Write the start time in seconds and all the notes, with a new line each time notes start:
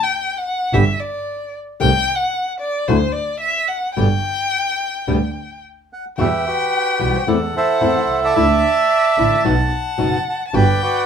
0.04 G5
0.38 F#5
0.73 G1 B2 D3 G3 B3 G4 E5
1.00 D5
1.80 C2 C3 D#3 A3 C4 G4 G5
2.16 F#5
2.61 D5
2.88 D2 D3 F#3 A3 E4 F#4 C5
3.13 D5
3.41 E5
3.68 F#5
3.95 G1 B2 D3 G3 B3 G4 G5
5.08 D2 B2 D3 G3 B3 G4
5.93 F#5
6.18 E2 B2 E3 G3 B3 F#4 G4 B4 E5 G5
6.46 F#4 G4 B4
6.99 B1 B2 E3 G3 B3 F#4
7.16 C5
7.27 E2 E3 A3 C4 E4 A4 D5 F#5
7.56 E4 A4 C5
7.81 E2 E3 A3 C4 E4
8.10 C2
8.24 D5 E5 A5
8.36 D2 D3 A3 D4 E4 E5
9.18 A1 D3 A3 D4 E4
9.44 B1 B2 F#3 B3 D#4 F#4 F#5
9.98 F#1 B2 F#3 B3 D#4 F#4
10.30 A5
10.47 A5
10.53 G1 G3 B3 F#4 B4 D5 G5
10.83 F#4 B4 D5